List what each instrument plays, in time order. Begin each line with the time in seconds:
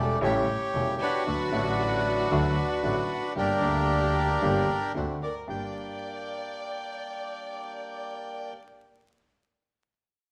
Already playing: upright piano E1 E2 C#3 G3 A3 E4, double bass E1, bandoneon C#3 A3 G4 D5, violin section A4
0.21 upright piano A1 A2 C#3 G3 A3 E4, double bass A1, bandoneon A3 C#4 G4 C#5 E5, violin section C#5
0.73 upright piano E1 E2 C#3 G3 A3 E4, double bass E1, bandoneon A3 C#4 G4
1.00 bandoneon D4 F#4 B4, violin section F#4
1.26 upright piano D2 D3 F#3 A3 F#4, double bass D2, bandoneon A3 D4 F#4
1.50 double bass A1, upright piano A1 A2 D3 F#3 A3, bandoneon A3 D4 F#4
1.54 upright piano F#4
2.31 double bass D2, upright piano D2 D3 F#3 A3 F#4, bandoneon A3 D4 F#4
2.83 upright piano A1 A2 D3 F#3 A3 F#4, double bass A1, bandoneon A3 D4 F#4
3.36 upright piano G1 G2 D3 G3 A#3 G4, double bass G1, bandoneon A#3 D4 G4 A#4, violin section G4
3.60 upright piano D2 D3 G3 A#3 G4, double bass D2, bandoneon A#3 D4 G4
4.41 upright piano G1 G2 D3 G3 A#3 G4, double bass G1, bandoneon A#3 D4 G4
4.94 upright piano D2 D3 A3 C4 F#4, double bass D2, bandoneon C4 D4 F#4
5.22 violin section A#4, bandoneon D5
5.48 double bass G1, upright piano G2 A#3 D4 G4, bandoneon A#3 D4 G4 G5, violin section D5